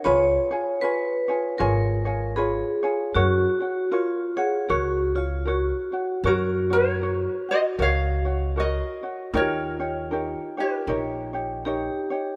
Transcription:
X:1
M:4/4
L:1/8
Q:"Swing" 1/4=78
K:F#
V:1 name="Ukulele"
z8 | z8 | [K:Gblyd] [GB] [Bd]2 [ce] [df]2 [Be]2 | [Bd]3 [=GB]4 z |]
V:2 name="Ukulele"
[EGBc] [EGc] [EGBc] [EGc] [EGc] [EGc] [EGBc] [EGc] | [FAc] [Fc] [EAc] [EFc] [FAc] [Ec] [FAc] [Fc] | [K:Gblyd] [GBd] [Gd] [GBd] G [GBd] [Gd] [GBd] [Gd] | [E=GBd] [EGd] [EGBd] [EGd] [EGBd] [EGd] [EGBd] [EGd] |]
V:3 name="Vibraphone"
c2 B2 A2 G2 | F2 E G F E F2 | [K:Gblyd] G8 | F6 =G2 |]
V:4 name="Upright bass" clef=bass
C,, z3 G,,,4 | F,, z3 C,,4 | [K:Gblyd] G,,4 D,,4 | E,,4 B,,,4 |]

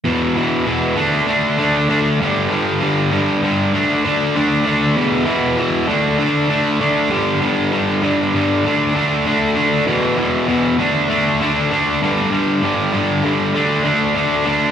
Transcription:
X:1
M:4/4
L:1/8
Q:1/4=98
K:Dlyd
V:1 name="Distorted electric guitar" clef=bass
[E,,B,,E,] [E,,B,,E,] [E,,B,,E,] [D,A,D] [D,A,D] [D,A,D] [D,A,D] [=G,,D,=G,] | [=G,,D,=G,] [G,,D,G,] [G,,D,G,] [G,,D,G,] [D,A,D] [D,A,D] [D,A,D] [D,A,D] | [E,,B,,E,] [E,,B,,E,] [E,,B,,E,] [D,A,D] [D,A,D] [D,A,D] [D,A,D] [=G,,D,=G,] | [=G,,D,=G,] [G,,D,G,] [G,,D,G,] [G,,D,G,] [D,A,D] [D,A,D] [D,A,D] [D,A,D] |
[E,,B,,E,] [E,,B,,E,] [E,,B,,E,] [D,A,D] [D,A,D] [D,A,D] [D,A,D] [=G,,D,=G,] | [=G,,D,=G,] [G,,D,G,] [G,,D,G,] [G,,D,G,] [D,A,D] [D,A,D] [D,A,D] [D,A,D] |]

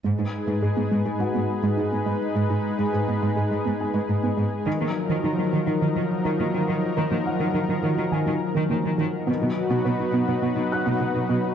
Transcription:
X:1
M:4/4
L:1/16
Q:1/4=104
K:G#dor
V:1 name="Felt piano"
z8 [Ff]8- | [Ff]4 z6 g6- | g6 z8 z2 | z2 f6 g8- |
g4 z6 [ff']6 |]
V:2 name="Analog synth pad"
[G,DGB]16- | [G,DGB]16 | [E,F,DA]16- | [E,F,DA]16 |
[F,DFB]16 |]
V:3 name="Synth pluck"
G, D z G, G B, G, G G, B, z G, D B, G, z | G, D z G, G B, G, G G, B, z G, D B, G, z | D, A, z D, D F, D, D D, F, z D, A, F, D, z | D, A, z D, D F, D, D D, F, z D, A, F, D, z |
B, F z B, B D B, B B, D z B, F D B, z |]
V:4 name="Cello section" clef=bass
G,, G,, z G,, G,, G,, G,, G,, G,, G,, z G,, G,, G,, G,, z | G,, G,, z G,, G,, G,, G,, G,, G,, G,, z G,, G,, G,, G,, z | D, D, z D, D, D, D, D, D, D, z D, D, D, D, z | D, D, z D, D, D, D, D, D, D, z D, D, D, D, z |
B,, B,, z B,, B,, B,, B,, B,, B,, B,, z B,, B,, B,, B,, z |]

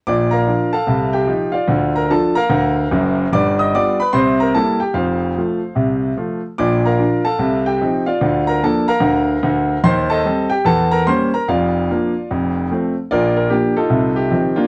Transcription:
X:1
M:4/4
L:1/8
Q:"Swing" 1/4=147
K:Bb
V:1 name="Grand piano"
[dd'] [Bfb]2 [Afa]2 [Gg]2 [Fdf]- | [Fdf] [Bb] [Aa] [Bfb]4- [Bfb] | [dd'] [ee'] [dd'] [=B=b] [cc'] [_B_b] [Aa] [Gg] | [Fcf]6 z2 |
[dd'] [Bfb]2 [Afa]2 [Gg]2 [Fdf]- | [Fdf] [Bb] [Aa] [Bfb]4- [Bfb] | [cc'] [Aea]2 [Gg] [Aa] [Bb] [cc'] [Bb] | [Fdf]6- [Fdf] z |
[FBd] B G [EFA]2 G2 [B,DF] |]
V:2 name="Grand piano" clef=bass
[B,,,B,,]2 [F,DF]2 [C,,C,]2 [F,EF]2 | [D,,D,]2 [F,DF]2 [D,,D,]2 [_G,,,_G,,]2 | [G,,,G,,]2 [G,=B,F]2 [C,,C,]2 [G,_B,=E]2 | [F,,,F,,]2 [F,A,F]2 [C,,C,]2 [F,A,F]2 |
[B,,,B,,]2 [F,DF]2 [C,,C,]2 [F,CE]2 | [D,,D,]2 [F,B,D]2 [D,,D,]2 [D,,D,]2 | [E,,E,]2 [G,C]2 [=E,,=E,]2 [G,B,^C]2 | [F,,,F,,]2 [F,B,D]2 [F,,,F,,]2 [F,A,C]2 |
[B,,,B,,]2 [F,B,D]2 [C,,C,]2 [E,F,C]2 |]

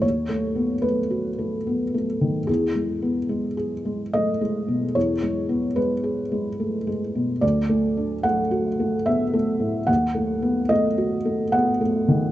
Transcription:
X:1
M:3/4
L:1/8
Q:1/4=73
K:E
V:1 name="Felt piano"
c2 B3 z | G4 d2 | c2 B3 z | =d2 f2 e2 |
f2 d2 f2 |]
V:2 name="Felt piano"
(3D,, A, B, (3A, F A, (3B, A, D, | (3E,, G, B, (3G, G G, (3A, G, B,, | (3E,, G, B, (3G, G G, (3A, G, B,, | (3=D,, A, =D (3A, F A, (3B, A, A,, |
(3D,, A, B, (3A, F A, (3B, A, D, |]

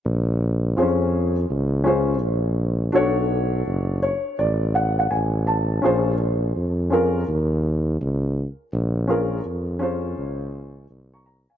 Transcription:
X:1
M:4/4
L:1/16
Q:"Swing 16ths" 1/4=83
K:Bbm
V:1 name="Upright piano"
z4 [CDFAc]2 z4 [DFAc]2 z4 | [=D^F=A^c]6 c2 =d2 ^f f _a2 =a2 | [DFAc]2 z4 [DFAB]2 z8 | z2 [DFAB]2 z2 [DFAc]6 z [bd'] b [fa] |]
V:2 name="Tuba" clef=bass
B,,,4 F,,4 D,,4 B,,,4 | =B,,,4 ^F,,,3 z =A,,,4 A,,,4 | B,,,4 F,,4 E,,4 D,,3 z | B,,,4 F,,4 D,,4 C,,3 C,, |]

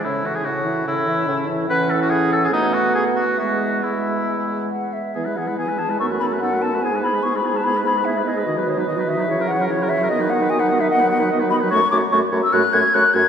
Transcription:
X:1
M:4/4
L:1/16
Q:1/4=146
K:A
V:1 name="Flute"
c2 e2 c2 e2 c2 e2 c2 e2 | [K:E] f8 f8 | e4 e8 f2 e2- | e2 f2 g2 a2 c'2 b2 f2 a2 |
g2 b2 c' b2 a b2 b2 e2 d2- | d2 c2 d2 e4 f2 c2 e2 | d2 f2 g f2 e f2 f2 z2 b2 | [K:F#m] c'2 d'2 c'3 e' f'2 g'2 f'2 g'2 |]
V:2 name="Oboe"
E2 F G F4 E6 z2 | [K:E] B2 A F G2 A G D2 F2 G2 F2 | F4 E8 z4 | G B G B G B G B A B A B A B A B |
G B G B G B G B G B G B G B G B | d B d B d B d B c ^A c A c A c A | d B d B d B d B d B d B d B d B | [K:F#m] c2 c2 c2 c2 c2 c2 c2 c2 |]
V:3 name="Clarinet"
C2 E2 C2 E2 C2 E2 C2 E2 | [K:E] C8 B,8 | B,4 B,8- B,2 z2 | B, E B, E B, E B, E D F D F D F D F |
E G E G E G E G E G E G E G E G | F D F D F D F D F E F E F E F E | F D F D F D F D F D F D F D F D | [K:F#m] F2 F2 F2 F2 F2 F2 F2 F2 |]
V:4 name="French horn" clef=bass
C,2 E,2 C,2 E,2 C,2 E,2 C,2 E,2 | [K:E] E,8 A,8 | G,4 G,8- G,2 z2 | E, G, E, G, E, G, E, G, B, A, B, A, B, A, B, A, |
B, G, B, G, B, G, B, G, B, G, B, G, B, G, B, G, | D, F, D, F, D, F, D, F, E, F, E, F, E, F, E, F, | B, F, B, F, B, F, B, F, B, F, B, F, B, F, B, F, | [K:F#m] A,2 A,2 A,2 A,2 A,2 A,2 A,2 A,2 |]
V:5 name="Bassoon" clef=bass
A,,4 A,,4 A,,4 A,,4 | [K:E] A,,8 B,,8 | E,,12- E,,2 z2 | E,,8 F,,8 |
G,,16 | B,,8 C,8 | D,16 | [K:F#m] F,,2 F,,2 F,,2 F,,2 F,,2 F,,2 F,,2 F,,2 |]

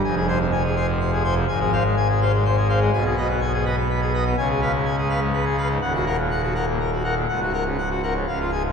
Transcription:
X:1
M:3/4
L:1/16
Q:1/4=124
K:Fdor
V:1 name="Pipe organ"
a A [ca] C, a A [ca] C, c A [ca] C, | a A [cf] A, a A [cf] A, c A [cf] A, | [K:F#] g G [Bd] B, g G [Bd] B, B G [Bd] B, | g G [Be] G,, g G [Be] G,, B G [Be] G,, |
f F [Af] A,, f F [Af] A,, A F [Af] A,, | f F [Af] C, f F [Af] C, e E [Gg] G,, |]
V:2 name="Pipe organ" clef=bass
[F,,,F,,]12 | [A,,,A,,]12 | [K:F#] [B,,,B,,]12 | [C,,C,]12 |
[D,,,D,,]12 | [C,,,C,,]8 [C,,,C,,]4 |]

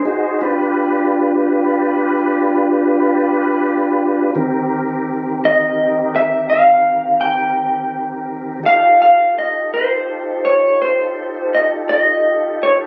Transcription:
X:1
M:12/8
L:1/8
Q:3/8=56
K:Cm
V:1 name="Clean electric guitar"
z12 | z3 e2 =e f2 g4 | f f e c2 _d c2 e e2 d |]
V:2 name="Tonewheel organ"
[E_GAc] [DF=G=B]8- [DFGB]3 | [E,CGB]12 | [EFG=A]12 |]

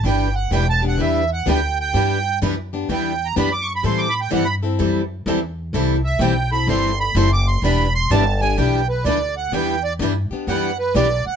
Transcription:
X:1
M:4/4
L:1/16
Q:"Swing" 1/4=127
K:Em
V:1 name="Accordion"
g2 f2 (3g2 a2 f2 e2 f2 g2 g2- | g4 z4 g3 ^a b d' ^c' b | c' d' b g f b z8 z2 | z2 e2 g2 b2 c'2 b2 (3c'2 d'2 c'2 |
b2 c'2 a2 ^g2 =g2 B2 d2 f2 | g2 d2 z4 f2 B2 d2 f2 |]
V:2 name="Steel-string acoustic guitar"
[E,G,DEB]2 z2 [E,G,DEB]2 z2 [E,G,DEB]2 z2 [E,G,DEB]2 z2 | [E,G,DEB]2 z2 [E,G,DEB]2 z2 [E,G,DEB]2 z2 [E,G,DEB]2 z2 | [E,G,CEA]2 z2 [E,G,CEA]2 z2 [E,G,CEA]2 z2 [E,G,CEA]2 z2 | [E,G,CEA]2 z2 [E,G,CEA]2 z2 [E,G,CEA]2 z2 [E,G,CEA]2 z2 |
[E,G,DEB]2 z2 [E,G,DEB]2 z2 [E,G,DEB]2 z2 [E,G,DEB]2 z2 | [E,G,DEB]2 z2 [E,G,DEB]2 z2 [E,G,DEB]2 z2 [E,G,DEB]2 z2 |]
V:3 name="Steel-string acoustic guitar"
[E,B,DG]2 z2 [E,B,DG]2 [B,DG]2 [E,B,DG]2 z2 [E,B,DG]2 z2 | [E,B,DG]2 z2 [E,B,DG]2 [B,DG]2 [E,B,DG]2 z2 [E,B,DG]2 z2 | [E,G,CEA]2 z2 [E,G,CEA]2 [CEA]2 [E,G,CEA]2 z2 [E,G,CEA]2 z2 | [E,G,CEA]2 z2 [E,G,CEA]2 [CEA]2 [E,G,CEA]2 z2 [E,G,CEA]2 z2 |
[E,B,DG]2 z2 [E,B,DG]2 [B,DG]2 [E,B,DG]2 z2 [E,B,DG]2 z2 | [E,B,DG]2 z2 [E,B,DG]2 [B,DG]2 [E,B,DG]2 z2 [E,B,DG]2 z2 |]
V:4 name="Upright bass" clef=bass
G,,,4 E,,,4 E,,4 D,,4 | G,,4 F,,4 E,,4 F,,4 | A,,4 G,,4 F,,4 E,,4 | C,,4 B,,,4 G,,,4 F,,,4 |
E,,,4 G,,,4 B,,,4 D,,4 | E,,4 G,,2 z2 F,,4 B,,,2 z2 |]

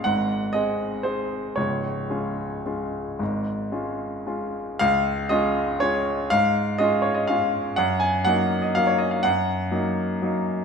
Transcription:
X:1
M:3/4
L:1/16
Q:1/4=120
K:Db
V:1 name="Grand piano"
g4 e4 c4 | d12- | d8- d2 z2 | f4 e4 d4 |
f4 e2 d e f4 | g2 a2 g3 e f d e f | g8- g2 z2 |]
V:2 name="Grand piano"
[A,,,A,,]4 [A,CA]4 [A,CA]4 | [D,,,D,,]4 [A,DF]4 [A,DF]4 | [A,,,A,,]4 [A,DF]4 [A,DF]4 | D,,4 [A,DF]4 [A,DF]4 |
A,,4 [A,DF]4 [A,DF]4 | G,,4 [G,B,E]4 [G,B,E]4 | G,,4 [G,B,E]4 [G,B,E]4 |]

